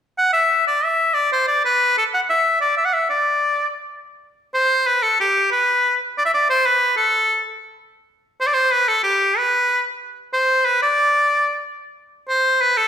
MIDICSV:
0, 0, Header, 1, 2, 480
1, 0, Start_track
1, 0, Tempo, 322581
1, 253, Time_signature, 6, 3, 24, 8
1, 19162, End_track
2, 0, Start_track
2, 0, Title_t, "Shawm"
2, 0, Program_c, 0, 111
2, 269, Note_on_c, 0, 78, 84
2, 485, Note_off_c, 0, 78, 0
2, 491, Note_on_c, 0, 76, 85
2, 938, Note_off_c, 0, 76, 0
2, 999, Note_on_c, 0, 74, 72
2, 1255, Note_on_c, 0, 76, 84
2, 1277, Note_off_c, 0, 74, 0
2, 1697, Note_on_c, 0, 74, 77
2, 1719, Note_off_c, 0, 76, 0
2, 1935, Note_off_c, 0, 74, 0
2, 1968, Note_on_c, 0, 72, 71
2, 2175, Note_off_c, 0, 72, 0
2, 2197, Note_on_c, 0, 74, 73
2, 2409, Note_off_c, 0, 74, 0
2, 2455, Note_on_c, 0, 71, 75
2, 2882, Note_off_c, 0, 71, 0
2, 2940, Note_on_c, 0, 69, 67
2, 3037, Note_off_c, 0, 69, 0
2, 3187, Note_on_c, 0, 78, 71
2, 3283, Note_off_c, 0, 78, 0
2, 3416, Note_on_c, 0, 76, 81
2, 3842, Note_off_c, 0, 76, 0
2, 3884, Note_on_c, 0, 74, 76
2, 4093, Note_off_c, 0, 74, 0
2, 4127, Note_on_c, 0, 76, 74
2, 4238, Note_on_c, 0, 78, 76
2, 4260, Note_off_c, 0, 76, 0
2, 4365, Note_on_c, 0, 76, 69
2, 4387, Note_off_c, 0, 78, 0
2, 4589, Note_off_c, 0, 76, 0
2, 4607, Note_on_c, 0, 74, 66
2, 5491, Note_off_c, 0, 74, 0
2, 6760, Note_on_c, 0, 72, 77
2, 7240, Note_on_c, 0, 71, 75
2, 7263, Note_off_c, 0, 72, 0
2, 7477, Note_on_c, 0, 69, 68
2, 7499, Note_off_c, 0, 71, 0
2, 7705, Note_off_c, 0, 69, 0
2, 7743, Note_on_c, 0, 67, 72
2, 8166, Note_off_c, 0, 67, 0
2, 8203, Note_on_c, 0, 71, 78
2, 8859, Note_off_c, 0, 71, 0
2, 9195, Note_on_c, 0, 74, 87
2, 9278, Note_off_c, 0, 74, 0
2, 9304, Note_on_c, 0, 76, 83
2, 9392, Note_off_c, 0, 76, 0
2, 9433, Note_on_c, 0, 74, 84
2, 9629, Note_off_c, 0, 74, 0
2, 9665, Note_on_c, 0, 72, 85
2, 9905, Note_on_c, 0, 71, 78
2, 9928, Note_off_c, 0, 72, 0
2, 10359, Note_off_c, 0, 71, 0
2, 10367, Note_on_c, 0, 69, 72
2, 11021, Note_off_c, 0, 69, 0
2, 12508, Note_on_c, 0, 72, 83
2, 12595, Note_on_c, 0, 74, 78
2, 12617, Note_off_c, 0, 72, 0
2, 12703, Note_on_c, 0, 72, 85
2, 12725, Note_off_c, 0, 74, 0
2, 12968, Note_on_c, 0, 71, 84
2, 12991, Note_off_c, 0, 72, 0
2, 13215, Note_on_c, 0, 69, 78
2, 13238, Note_off_c, 0, 71, 0
2, 13434, Note_off_c, 0, 69, 0
2, 13442, Note_on_c, 0, 67, 80
2, 13953, Note_on_c, 0, 71, 77
2, 13975, Note_off_c, 0, 67, 0
2, 14663, Note_off_c, 0, 71, 0
2, 15371, Note_on_c, 0, 72, 75
2, 15845, Note_on_c, 0, 71, 76
2, 15868, Note_off_c, 0, 72, 0
2, 16089, Note_off_c, 0, 71, 0
2, 16107, Note_on_c, 0, 74, 90
2, 17240, Note_off_c, 0, 74, 0
2, 18285, Note_on_c, 0, 72, 78
2, 18765, Note_on_c, 0, 71, 81
2, 18788, Note_off_c, 0, 72, 0
2, 19003, Note_on_c, 0, 69, 81
2, 19025, Note_off_c, 0, 71, 0
2, 19162, Note_off_c, 0, 69, 0
2, 19162, End_track
0, 0, End_of_file